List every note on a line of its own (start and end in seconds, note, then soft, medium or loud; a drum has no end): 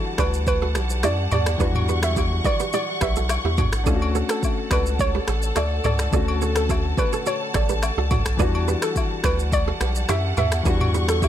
0.00 1.55 E3 medium
0.00 1.59 G3 medium
0.00 3.82 G3 medium
0.00 1.57 D4 medium
0.00 1.57 F#4 medium
0.00 8.35 F#5 medium
0.00 1.56 A5 medium
0.18 0.77 D2 loud
0.18 0.31 B4 medium
0.18 0.30 D5 medium
0.18 finger snap medium
0.18 kick medium
0.18 cross-stick loud
0.18 high agogo medium
0.18 shaker medium
0.34 shaker medium
0.47 0.88 B4 loud
0.47 kick loud
0.47 high agogo medium
0.47 shaker medium
0.62 0.73 F#4 medium
0.62 0.73 A4 medium
0.75 1.05 B1 medium
0.75 0.87 G4 medium
0.75 0.87 B4 medium
0.75 finger snap medium
0.75 cross-stick medium
0.75 shaker medium
0.90 shaker medium
1.03 1.28 F#2 loud
1.03 1.16 E4 medium
1.03 1.15 G4 medium
1.03 1.16 D5 medium
1.03 finger snap medium
1.03 cross-stick medium
1.03 high agogo medium
1.03 low woodblock medium
1.03 shaker medium
1.31 1.56 E2 medium
1.31 1.44 G4 medium
1.31 1.44 B4 medium
1.31 1.45 D5 medium
1.31 mid tom loud
1.31 high agogo medium
1.31 shaker soft
1.46 finger snap medium
1.46 cross-stick medium
1.46 shaker medium
1.58 2.41 E2 loud
1.58 3.81 E3 medium
1.58 1.66 F#3 medium
1.58 3.82 D4 medium
1.58 1.72 B4 medium
1.58 1.72 D5 loud
1.58 3.84 C#6 medium
1.58 kick loud
1.58 shaker medium
1.63 3.85 G3 medium
1.63 3.84 F#4 medium
1.75 mid tom loud
1.75 high agogo medium
1.89 2.01 G4 medium
1.89 2.00 B4 medium
1.89 shaker medium
2.03 2.15 E5 medium
2.03 finger snap medium
2.03 cross-stick loud
2.03 shaker medium
2.16 2.29 E4 medium
2.16 2.28 G4 medium
2.16 kick medium
2.16 high agogo medium
2.16 low woodblock medium
2.16 shaker medium
2.45 2.57 B4 medium
2.45 2.57 D5 medium
2.45 2.58 D5 medium
2.45 kick medium
2.45 high agogo medium
2.45 shaker medium
2.60 2.71 G4 medium
2.60 2.71 B4 medium
2.60 shaker medium
2.73 2.86 E4 medium
2.73 2.85 G4 medium
2.73 2.86 D5 medium
2.73 high agogo medium
2.73 shaker medium
3.01 3.38 B1 medium
3.01 3.14 G4 medium
3.01 3.13 B4 medium
3.01 3.14 E5 medium
3.01 finger snap medium
3.01 kick medium
3.01 cross-stick medium
3.01 shaker medium
3.16 3.28 F#4 medium
3.16 3.27 A4 medium
3.16 shaker medium
3.29 finger snap medium
3.29 cross-stick medium
3.29 high agogo medium
3.29 low woodblock medium
3.29 shaker medium
3.45 3.69 E2 medium
3.45 3.56 E4 medium
3.45 3.55 G4 medium
3.58 3.70 D4 medium
3.58 3.70 F#4 medium
3.58 kick loud
3.58 mid tom loud
3.58 high agogo medium
3.58 shaker soft
3.72 3.88 A1 medium
3.72 finger snap medium
3.72 cross-stick medium
3.72 shaker medium
3.84 4.23 D2 loud
3.84 6.08 A3 medium
3.84 6.09 C#4 medium
3.84 6.08 D4 medium
3.84 8.35 A4 medium
3.84 3.99 A4 medium
3.84 3.98 D5 loud
3.84 10.62 A5 medium
3.84 kick loud
3.84 shaker medium
3.89 3.94 F4 medium
3.95 6.13 F#4 medium
4.02 high agogo medium
4.15 4.27 A4 medium
4.15 4.27 C#5 medium
4.15 shaker medium
4.29 4.42 A4 medium
4.29 finger snap medium
4.29 cross-stick loud
4.29 shaker medium
4.43 kick medium
4.43 high agogo medium
4.43 low woodblock medium
4.43 shaker medium
4.71 5.19 C#2 medium
4.71 4.84 B4 medium
4.71 4.83 D5 medium
4.71 finger snap medium
4.71 kick medium
4.71 cross-stick loud
4.71 high agogo medium
4.71 shaker medium
4.86 shaker medium
4.99 5.41 C#5 loud
4.99 kick loud
4.99 high agogo medium
4.99 shaker medium
5.15 5.26 G4 medium
5.15 5.25 B4 medium
5.28 5.52 A1 loud
5.28 5.40 A4 medium
5.28 5.40 C#5 medium
5.28 finger snap medium
5.28 cross-stick medium
5.28 shaker medium
5.42 shaker medium
5.56 5.80 D2 medium
5.56 5.69 F#4 medium
5.56 5.68 A4 medium
5.56 5.69 D5 medium
5.56 finger snap medium
5.56 cross-stick medium
5.56 high agogo medium
5.56 low woodblock medium
5.56 shaker medium
5.84 6.09 C#2 loud
5.84 5.97 A4 medium
5.84 5.96 C#5 medium
5.84 5.98 D5 medium
5.84 mid tom loud
5.84 high agogo medium
5.84 shaker soft
5.99 finger snap medium
5.99 cross-stick medium
5.99 shaker medium
6.11 6.94 D2 loud
6.11 8.34 D3 medium
6.11 8.35 A3 medium
6.11 8.36 C#4 medium
6.11 6.25 A4 medium
6.11 6.25 D5 loud
6.11 kick loud
6.11 shaker medium
6.16 8.37 F#4 medium
6.28 high agogo medium
6.41 6.54 A4 medium
6.41 6.53 C#5 medium
6.41 shaker medium
6.56 6.68 A4 medium
6.56 finger snap medium
6.56 cross-stick loud
6.56 shaker medium
6.69 6.82 F#4 medium
6.69 6.81 A4 medium
6.69 kick medium
6.69 high agogo medium
6.69 low woodblock medium
6.69 shaker medium
6.98 7.11 B4 medium
6.98 7.10 B4 medium
6.98 7.10 D5 medium
6.98 kick medium
6.98 high agogo medium
6.98 shaker medium
7.13 7.24 A4 medium
7.13 7.23 C#5 medium
7.13 shaker medium
7.26 7.38 F#4 medium
7.26 7.38 A4 medium
7.26 7.39 C#5 medium
7.26 high agogo medium
7.26 shaker medium
7.54 7.91 A1 medium
7.54 7.67 A4 medium
7.54 7.66 C#5 medium
7.54 7.67 D5 medium
7.54 finger snap medium
7.54 kick medium
7.54 cross-stick medium
7.54 shaker medium
7.69 7.81 G4 medium
7.69 7.80 B4 medium
7.69 shaker medium
7.82 finger snap medium
7.82 cross-stick medium
7.82 high agogo medium
7.82 low woodblock medium
7.82 shaker medium
7.98 8.22 C#2 loud
7.98 8.09 F#4 medium
7.98 8.08 A4 medium
8.11 8.23 D4 medium
8.11 8.23 F#4 medium
8.11 kick loud
8.11 mid tom loud
8.11 high agogo medium
8.11 shaker soft
8.26 8.37 B1 medium
8.26 finger snap medium
8.26 cross-stick medium
8.26 shaker medium
8.37 8.76 E2 loud
8.37 10.61 E3 medium
8.37 10.61 G3 medium
8.37 11.28 G3 medium
8.37 10.62 D4 medium
8.37 8.52 B4 medium
8.37 8.51 D5 loud
8.37 11.28 F#5 medium
8.37 kick loud
8.37 shaker medium
8.42 10.63 F#4 medium
8.55 high agogo medium
8.68 8.80 G4 medium
8.68 8.79 B4 medium
8.68 shaker medium
8.82 8.94 A4 medium
8.82 finger snap medium
8.82 cross-stick loud
8.82 shaker medium
8.96 kick medium
8.96 high agogo medium
8.96 low woodblock medium
8.96 shaker medium
9.24 9.72 D2 medium
9.24 9.37 B4 medium
9.24 9.36 B4 medium
9.24 9.36 D5 medium
9.24 finger snap medium
9.24 kick medium
9.24 cross-stick loud
9.24 high agogo medium
9.24 shaker medium
9.39 shaker medium
9.52 9.93 D5 loud
9.52 kick loud
9.52 high agogo medium
9.52 shaker medium
9.68 9.79 F#4 medium
9.68 9.78 A4 medium
9.81 10.05 B1 medium
9.81 9.93 G4 medium
9.81 9.93 B4 medium
9.81 finger snap medium
9.81 cross-stick loud
9.81 shaker medium
9.95 shaker medium
10.09 10.33 F#2 medium
10.09 10.21 E4 medium
10.09 10.21 G4 medium
10.09 10.22 E5 medium
10.09 finger snap medium
10.09 cross-stick medium
10.09 high agogo medium
10.09 low woodblock medium
10.09 shaker medium
10.37 10.61 E2 loud
10.37 10.50 G4 medium
10.37 10.49 B4 medium
10.37 10.50 E5 medium
10.37 mid tom loud
10.37 high agogo medium
10.37 shaker soft
10.52 finger snap medium
10.52 cross-stick medium
10.52 shaker medium
10.63 11.28 E2 loud
10.63 11.28 E3 medium
10.63 11.28 G3 medium
10.63 11.28 D4 medium
10.63 10.78 B4 medium
10.63 10.78 D5 loud
10.63 11.28 C#6 medium
10.63 kick loud
10.63 shaker medium
10.68 11.28 F#4 medium
10.81 mid tom medium
10.81 high agogo medium
10.94 11.06 G4 medium
10.94 11.06 B4 medium
10.94 shaker medium
11.08 11.21 A4 medium
11.08 finger snap medium
11.08 cross-stick loud
11.08 shaker medium
11.22 11.28 E4 medium
11.22 11.28 G4 medium
11.22 kick medium
11.22 high agogo medium
11.22 low woodblock medium
11.22 shaker medium